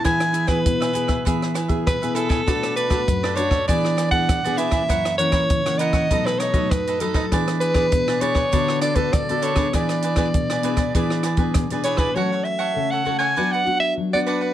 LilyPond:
<<
  \new Staff \with { instrumentName = "Soprano saxophone" } { \time 4/4 \key e \mixolydian \tempo 4 = 99 gis''8. b'4. r8. b'8 a'8~ | a'8 b'4 cis''8 d''8. fis''8. e''8~ | e''8 cis''4 dis''8. b'16 cis''8 b'8 a'8 | r8 b'4 cis''4 d''16 b'16 d''8 cis''8 |
d''2. r8 cis''16 b'16 | \key fis \minor cis''8 e''8. fis''8 gis''8 fis''8 e''8 d''16 b'8 | }
  \new Staff \with { instrumentName = "Cavaquinho" } { \time 4/4 \key e \mixolydian <e' gis' b' e''>8 <e' gis' b' e''>16 <e' gis' b' e''>16 r16 <gis' b' e''>16 <e' gis' b' e''>16 <gis' b' e''>16 <e' gis' b' e''>8 <e' gis' b' e''>16 <gis' b' e''>8 <gis' b' e''>16 <e' gis' b' e''>16 <e' gis' b' e''>16 | <d' a' b' d''>8 <d' a' b' d''>16 <d' a' b' d''>16 r16 <a' b' d''>16 <d' a' b' d''>16 <a' b' d''>16 <e' gis' b' d''>8 <e' gis' b' d''>16 <gis' b' d''>8 <gis' b' d''>16 <e' gis' b' d''>16 <e' gis' b' d''>16 | <e' ais' cis'' fis''>8 <e' ais' cis'' fis''>16 <e' ais' cis'' fis''>16 r16 <ais' cis'' fis''>16 <e' ais' cis'' fis''>16 <ais' cis'' fis''>16 <dis' a' b' dis''>8 <dis' a' b' dis''>16 <a' b' dis''>8 <a' b' dis''>16 <dis' a' b' dis''>16 <dis' a' b' dis''>16 | <e' gis' b' d''>8 <e' gis' b' d''>16 <e' gis' b' d''>16 r16 <gis' b' d''>16 <e' gis' b' d''>16 <gis' b' d''>16 <d' a' b' d''>8 <d' a' b' d''>16 <a' b' d''>8 <a' b' d''>16 <d' a' b' d''>16 <d' a' b' d''>16 |
<e' gis' b' d''>8 <e' gis' b' d''>16 <e' gis' b' d''>16 r16 <gis' b' d''>16 <e' gis' b' d''>16 <gis' b' d''>16 <e' gis' b' d''>8 <e' gis' b' d''>16 <gis' b' d''>8 <gis' b' d''>16 <e' gis' b' d''>16 <e' gis' b' d''>16 | \key fis \minor <fis' a' cis'' fis''>16 <a' cis'' fis''>16 r16 <a' cis'' fis''>8 <a' cis'' fis''>16 <fis' a' cis'' fis''>16 <a' cis'' fis''>16 <d' b' d'' fis''>16 <b' d'' fis''>16 r8. <b' d'' fis''>16 <d' b' d'' fis''>16 <b' d'' fis''>16 | }
  \new Staff \with { instrumentName = "Nylon-string guitar" } { \time 4/4 \key e \mixolydian << { <b e' gis'>8. <b e' gis'>8. <b e' gis'>16 r16 <b e' gis'>8 r16 <b e' gis'>8 <b e' gis'>8. | <a d' fis'>8. <a d' fis'>8. <a d' fis'>16 r16 <b d' gis'>8. <b d' gis'>8 <b d' gis'>8 <e bes cis'>16~ | <e bes cis'>8 <e ais cis'>8. <e ais cis'>8. <fis a dis'>8. <fis a dis'>8. <fis a dis'>8 | <b d' gis'>8. <b d' gis'>8. <b d' gis'>16 r16 <b fis' a'>8. <b fis' a'>8 <b fis' a'>8 <b d' gis'>16~ |
<b d' gis'>8. <b d' gis'>8. <b d' gis'>16 r16 <b d' gis'>8 r16 <b d' gis'>8 <b d' gis'>8. | \key fis \minor <a cis' a'>4 <a cis' a'>8 <a cis' a'>16 r16 <b d' fis'>8 <b d' fis'>8. <b d' fis'>8. | } \\ { e4 b,4 e4 b,4 | b,4 fis,4 e4 r4 | fis,4 cis4 b,4 fis,4 | e4 b,4 d4 d4 |
e4 b,4 e4 b,4 | fis4 cis4 fis4 fis4 | } >> }
  \new DrumStaff \with { instrumentName = "Drums" } \drummode { \time 4/4 <hh bd ss>16 <hh ss>16 hh16 <hh bd ss>16 <hh bd>16 <hh ss>16 hh16 <hh bd ss>16 <hh bd>16 ss16 <hh ss>16 <hh bd>16 <hh bd ss>16 hh16 hh16 <bd ss>16 | <hh bd ss>16 <hh ss>16 hh16 <hh bd ss>16 <hh bd>16 ss16 hh16 <bd ss>16 <hh bd>16 ss16 <hh ss>16 <hh bd>16 <hh bd ss>16 hh16 hh16 <hh bd ss>16 | <hh bd ss>16 <hh ss>16 hh16 <hh bd ss>16 <hh bd>16 <hh ss>16 hh16 <hh bd ss>16 <hh bd>16 ss16 <hh ss>16 <hh bd>16 <hh bd ss>16 hh16 hh16 <bd ss>16 | <hh bd ss>16 <hh ss>16 hh16 <hh bd ss>16 <hh bd>16 ss16 hh16 <bd ss>16 <hh bd>16 ss16 <hh ss>16 <hh bd>16 <hh bd ss>16 hh16 hh16 <hh bd ss>16 |
<hh bd ss>16 <hh ss>16 hh16 <hh bd ss>16 <hh bd>16 <hh ss>16 hh16 <hh bd ss>16 <hh bd>16 ss16 <hh ss>16 <hh bd>16 <hh bd ss>16 hh16 hh16 <bd ss>16 | r4 r4 r4 r4 | }
>>